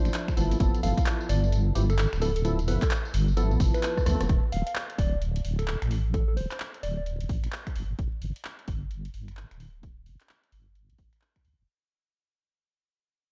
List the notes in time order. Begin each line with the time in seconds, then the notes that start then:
Already playing: F3 D4 E4 C5
0.05 finger snap, closed hi-hat, tambourine
0.14 clap, closed hi-hat, tambourine
0.28 finger snap, kick, tambourine
0.37 G1 F3 B3 E4 A4, open hi-hat, tambourine
0.51 closed hi-hat, tambourine
0.60 G1 F3 B3 E4 A4, kick, closed hi-hat, tambourine
0.74 closed hi-hat, tambourine
0.83 G1 F3 B3 E4 A4 F5, open hi-hat, tambourine
0.97 F5, kick, closed hi-hat, tambourine
1.06 clap, closed hi-hat, tambourine
1.21 tambourine
1.29 G1 D5, open hi-hat, tambourine
1.44 tambourine
1.52 closed hi-hat, tambourine
1.75 G1 F3 B3 E4 G4, open hi-hat, tambourine
1.90 A4, finger snap, closed hi-hat, tambourine
1.99 A4, clap, closed hi-hat, tambourine
2.13 D1, finger snap, tambourine
2.21 F3 B3 E4 A4, open hi-hat, tambourine
2.36 A4, closed hi-hat, tambourine
2.45 F3 B3 E4 A4, closed hi-hat, tambourine
2.59 closed hi-hat, tambourine
2.68 G1 F3 B3 E4 A4 B4, open hi-hat, tambourine
2.82 A4, kick, clap, closed hi-hat, tambourine
2.91 clap, closed hi-hat, tambourine
3.05 tambourine
3.14 G1, open hi-hat, tambourine
3.28 tambourine
3.37 F3 B3 E4 A4, closed hi-hat, tambourine
3.51 B1, tambourine
3.60 G1, kick, open hi-hat, tambourine
3.74 B4, finger snap, closed hi-hat, tambourine
3.83 clap, closed hi-hat, tambourine
3.97 kick, cross-stick, tambourine
4.06 D2 F3 B3 E4 A4, cross-stick, open hi-hat, tambourine
4.21 F1, cross-stick, closed hi-hat, tambourine
4.29 D1, kick, closed hi-hat
4.52 D1 F5, open hi-hat
4.67 F5, closed hi-hat
4.75 clap
4.90 closed hi-hat
4.98 D1 D5, kick, open hi-hat
5.22 closed hi-hat
5.36 closed hi-hat
5.45 D1, open hi-hat
5.59 A4, finger snap, closed hi-hat
5.67 A4, clap
5.82 A1, finger snap, closed hi-hat
5.91 open hi-hat
6.14 A4, kick, closed hi-hat
6.28 A4
6.37 D1 C5, open hi-hat
6.51 C5, clap, closed hi-hat
6.60 clap
6.74 closed hi-hat
6.83 D1 D5, open hi-hat
6.97 D5
7.06 closed hi-hat
7.21 F1, closed hi-hat
7.29 A1, kick, open hi-hat
7.44 finger snap, closed hi-hat
7.52 clap
7.67 finger snap, kick, closed hi-hat
7.75 G1, open hi-hat
7.99 G1, kick, closed hi-hat
8.22 G1, open hi-hat
8.36 closed hi-hat
8.45 clap
8.59 closed hi-hat
8.68 G1, kick, open hi-hat
8.91 closed hi-hat
9.05 closed hi-hat
9.14 G1, open hi-hat
9.28 finger snap, closed hi-hat
9.37 clap
9.51 D1, finger snap, closed hi-hat
9.60 open hi-hat
9.83 kick, closed hi-hat
10.06 G1, open hi-hat
10.20 clap, closed hi-hat
10.29 clap
10.44 closed hi-hat
10.52 G1, open hi-hat
10.75 closed hi-hat
10.90 B1, closed hi-hat
10.98 G1, kick, open hi-hat
11.13 finger snap, closed hi-hat
11.21 clap
11.36 finger snap, kick, closed hi-hat
11.45 D2, open hi-hat
11.59 F1